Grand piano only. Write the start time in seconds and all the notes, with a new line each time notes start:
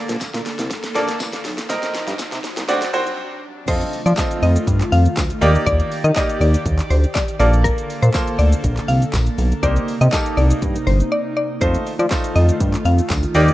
Already playing: A#3 A4 D5
0.95 A#3 A4 D5
1.69 C4 A#4 D#5
2.68 C4 F#4 D5
2.93 C4 F#4 C5
3.68 C4 F4 A4 D#5
4.17 C4 F4 A4 D#5
5.41 A#3 D#4 G4 D5
6.16 A#3 D#4 G4 D5
7.40 A#3 F4 A4 D5
8.14 A#3 F4 A4 C5
9.63 A#3 D#4 G4 C5
10.12 A#3 D#4 G4 A4
11.61 A3 D#4 F4 C5
12.11 A3 D#4 F4 C5
13.35 A#3 D#4 G4 D5